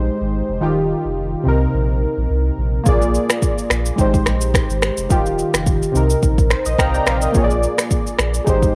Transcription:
Already playing: G#3 D#4 G4 C5
0.21 G#1
0.49 F1
0.61 D#1 D#3 D#4 F4 G4
1.05 F1
1.43 C2 C3 C4 D#4
1.48 A#4
1.74 A#1
2.17 A#1
2.30 C2
2.58 A#1
2.84 A#1 A#3 F4 G#4, kick, shaker
2.89 D5
3.02 shaker
3.15 shaker
3.30 finger snap, cross-stick, shaker
3.42 kick, shaker
3.58 shaker
3.70 A#1, finger snap, cross-stick, shaker
3.86 shaker
3.96 G#1 G#3 D#4 G4, kick, shaker
4.01 C5
4.14 kick, shaker
4.26 A#1, finger snap, cross-stick, shaker
4.41 shaker
4.54 finger snap, kick, cross-stick, shaker
4.70 G#1, shaker
4.82 finger snap, cross-stick, shaker
4.97 F1, shaker
5.09 D#1 D#3 D#4 F4 G4, kick, shaker
5.26 shaker
5.39 shaker
5.54 F1, finger snap, cross-stick, shaker
5.66 kick, shaker
5.82 shaker
5.92 C2 C3 C4 D#4, shaker
5.97 A#4
6.10 shaker
6.23 A#1, kick, shaker
6.38 kick, shaker
6.50 C5, finger snap, cross-stick, shaker
6.66 A#1 D#5, shaker
6.78 C2 F5 G5 A#5, finger snap, kick, cross-stick, shaker
6.94 D5 G5 A#5, shaker
7.07 A#1 C5 F5, finger snap, cross-stick, shaker
7.22 A#4 D#5, shaker
7.32 A#1 A#3 F4 G#4, kick, shaker
7.37 C#5
7.44 D5
7.50 shaker
7.63 shaker
7.78 finger snap, cross-stick, shaker
7.91 kick, shaker
8.07 shaker
8.19 A#1, finger snap, cross-stick, shaker
8.34 shaker
8.44 G#1 G#3 D#4 G4, kick, shaker
8.49 C5
8.62 kick, shaker

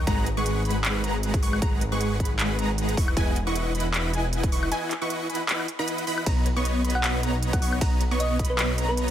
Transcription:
0.07 G#1 G#3 G#4 B4 F#5 A#5, kick, closed hi-hat
0.26 closed hi-hat
0.37 G#3 G#4 B4 F#5 C#6
0.46 closed hi-hat
0.65 G#3 G#4 B4 F#5 B5, closed hi-hat
0.71 closed hi-hat
0.85 clap, closed hi-hat
1.04 G#3 G#4 B4 F#5 A#5, closed hi-hat
1.23 closed hi-hat
1.34 kick, closed hi-hat
1.43 G#3 G#4 B4 F#5 C#6, open hi-hat
1.53 high woodblock
1.62 G#3 G#4 A#5, kick, closed hi-hat
1.81 closed hi-hat
1.92 G#3 G#4 B4 F#5 C#6
2.01 closed hi-hat
2.20 G#3 G#4 B5, kick, closed hi-hat
2.25 closed hi-hat
2.39 clap, closed hi-hat
2.59 G#3 G#4 B4 F#5 A#5, closed hi-hat
2.78 closed hi-hat
2.89 closed hi-hat
2.97 E1 E4 B4 F#5 C#6, kick, open hi-hat
3.08 high woodblock
3.17 E4 B4 D#5 F#5 G#5, kick, closed hi-hat
3.36 closed hi-hat
3.47 E4 B4 D#5 F#5 C#6
3.55 closed hi-hat
3.75 E4 B4 D#5 F#5 B5, closed hi-hat
3.80 closed hi-hat
3.94 clap, closed hi-hat
4.13 E4 B4 D#5 F#5 G#5, closed hi-hat
4.33 closed hi-hat
4.43 kick, closed hi-hat
4.52 E4 B4 D#5 F#5 C#6, open hi-hat
4.63 high woodblock
4.72 E4 B4 D#5 F#5 G#5, closed hi-hat
4.91 clap, closed hi-hat
5.02 E4 B4 D#5 F#5 C#6
5.10 closed hi-hat
5.30 E4 B4 D#5 F#5 B5, closed hi-hat
5.35 closed hi-hat
5.49 clap, closed hi-hat
5.60 high woodblock
5.68 closed hi-hat
5.79 E4 B4 D#5 F#5 B5
5.88 closed hi-hat
5.98 closed hi-hat
6.07 E4 B4 D#5 F#5 B5, open hi-hat
6.18 high woodblock
6.26 B1 B3 B4 C#5 D#5 A#5, kick, closed hi-hat, ride
6.46 closed hi-hat
6.56 B3 B4 C#5 D#5 C#6
6.65 closed hi-hat
6.85 B3 B4 C#5 D#5 B5, closed hi-hat
6.90 closed hi-hat
6.95 F#5
7.04 F#5, clap, closed hi-hat, ride
7.23 B3 B4 C#5 D#5 A#5, closed hi-hat
7.43 closed hi-hat
7.53 F#5, kick, closed hi-hat
7.62 B3 B4 C#5 D#5 C#6, open hi-hat
7.73 high woodblock
7.81 A#5, kick, closed hi-hat, ride
8.01 closed hi-hat
8.11 B3 B4 C#5 D#5 C#6
8.20 D#5, closed hi-hat
8.39 B3 B4 C#5 D#5 B5, kick, closed hi-hat
8.45 closed hi-hat
8.50 B4
8.59 B4, clap, closed hi-hat, ride
8.78 B3 B4 C#5 D#5 A#5, closed hi-hat
8.89 B4
8.97 closed hi-hat

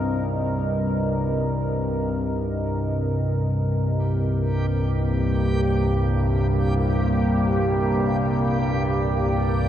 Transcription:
Already playing: C2 G2 C4 A#4 D#5
3.80 A#3 G4
4.22 G4
7.75 D5

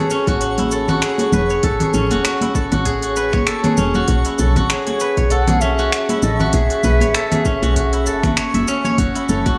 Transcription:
Already playing: C#4 E4 F#4 G#4 B4 C#5
0.10 C#4, shaker
0.27 A1 F#4, kick, open hi-hat, muted conga, shaker
0.41 F#4, open hi-hat, shaker
0.58 E4, open hi-hat, high conga, low conga, shaker
0.71 A4, shaker
0.88 F#4, low conga, shaker
1.02 G#4, finger snap, open hi-hat, shaker
1.18 F#4, open hi-hat, muted conga, shaker
1.32 E1 B4, low conga, shaker
1.50 C#5, shaker
1.63 A1 A4, kick, open hi-hat, shaker
1.80 G#4, open hi-hat, low conga, shaker
1.93 A1 C#4, low conga, shaker
2.11 E1 F#4, open hi-hat, muted conga, shaker
2.25 F#4, finger snap, open hi-hat, shaker
2.41 E4, open hi-hat, muted conga, high conga
2.55 A4, kick, shaker
2.72 A1 F#4, open hi-hat, muted conga, low conga, shaker
2.85 G#4, kick, open hi-hat, shaker
3.02 F#4, open hi-hat, shaker
3.16 B4, shaker
3.33 C#5, finger snap, kick, high conga, shaker
3.47 A4, finger snap, open hi-hat, shaker
3.64 G#4, open hi-hat, high conga, low conga, shaker
3.77 E1 C#4, shaker
3.94 F#4, high conga, low conga, shaker
4.08 B1 F#4, kick, open hi-hat, shaker
4.25 E4, open hi-hat, shaker
4.39 B1 A4, high conga, low conga, shaker
4.56 A1 F#4, kick, open hi-hat, muted conga, low conga, shaker
4.70 G#4 C#5, finger snap, open hi-hat, shaker
4.87 F#4, open hi-hat, muted conga
5.00 B4, shaker
5.17 B1 C#5, kick, open hi-hat, muted conga, shaker
5.30 A4 F#5, open hi-hat, shaker
5.48 G#4, open hi-hat, high conga, low conga, shaker
5.61 C#4 E5, shaker
5.79 F#4, shaker
5.92 F#4, finger snap, open hi-hat, shaker
6.09 E4, open hi-hat, muted conga, shaker
6.22 A1 A4 D#5, low conga, shaker
6.36 E5, low conga, shaker
6.40 F#4
6.53 B1 G#4, kick, open hi-hat, shaker
6.70 F#4, open hi-hat, shaker
6.83 B1 B4, high conga, low conga, shaker
7.01 A1 C#5, open hi-hat, muted conga, shaker
7.15 A4, finger snap, open hi-hat, shaker
7.31 G#4, open hi-hat, muted conga, high conga, low conga, shaker
7.45 C#4, kick, shaker
7.62 B1 F#4, open hi-hat, muted conga, shaker
7.76 F#4, kick, open hi-hat, shaker
7.93 E4, open hi-hat, shaker
8.06 F#1 A4, shaker
8.24 F#4, finger snap, kick, open hi-hat, high conga, low conga, shaker
8.37 C#5, finger snap, open hi-hat, shaker
8.54 F#1 E5, open hi-hat, high conga, shaker
8.68 C#4, shaker
8.85 C#5, high conga, low conga, shaker
8.98 F#1 A3 F#4, kick, open hi-hat, shaker
9.15 E4, open hi-hat, shaker
9.29 F#1 A4, high conga, low conga, shaker
9.46 E1 F#4, kick, open hi-hat, muted conga, shaker

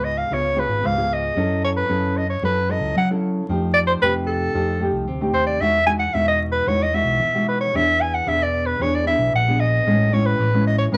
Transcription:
Already playing: C#2 G#2 B3 F4 G#4
0.04 D#5
0.18 F5
0.31 C#2 C#3 B3 F4 G#4 C#5
0.56 B3 F4 G#4 B4
0.68 G#1
0.83 C#2 G#2 F5
0.97 B3 F4 G#4
1.13 D#5
1.36 F#2 F#3 C#4 E4 A4
1.64 C#5
1.77 B4
1.89 F#2 C#3 C#4 E4 A4
2.17 D#5
2.30 C#5
2.43 F#2 F#3 C#4 E4 A4 B4
2.69 C#4 E4 A4 D#5
2.80 C#2
2.95 C#3 F#3 F#5
3.10 C#4 E4 A4
3.49 F2 F3 A3 D#4 G4
3.74 D5
3.87 C5
4.01 F2 C3 A3 D#4 G4 B4
4.27 A4
4.54 F2 F3 A3 D#4 G4
4.79 A3 D#4 G4
4.92 C2
5.07 D2 C3
5.21 A3 D#4 G4
5.33 D#2 C5
5.47 D5
5.60 E2 E3 G#3 D#4 F#4 E5
5.86 G#3 D#4 F#4 G#5
5.99 F#5
6.14 E2 B2 G#3 D#4 F#4 E5
6.28 D#5
6.52 B4
6.66 E2 E3 G#3 D#4 F#4 C#5
6.83 D#5
6.93 G#3 D#4 F#4 E5
7.04 B1
7.20 B2 E3
7.34 G#3 D#4 F#4
7.49 B4
7.61 C#5
7.74 E2 E3 B3 D4 G#4 E5
8.01 G#5
8.14 F#5
8.26 E2 B2 B3 D4 G#4 E5
8.43 D5
8.66 B4
8.80 E2 E3 B3 D4 G#4 C#5
8.95 D5
9.06 B3 D4 G#4 E5
9.18 B1
9.33 A#1 F#5
9.48 B3 D4 G#4
9.60 D#5
9.86 A1 A2 G#3 C#4 E4
10.12 G#3 C#4 E4 C#5
10.26 B4
10.39 A1 E3
10.54 G#3 C#4 E4
10.67 D#5
10.79 C#5
10.92 A1 A2 G#3 C#4 E4 B4

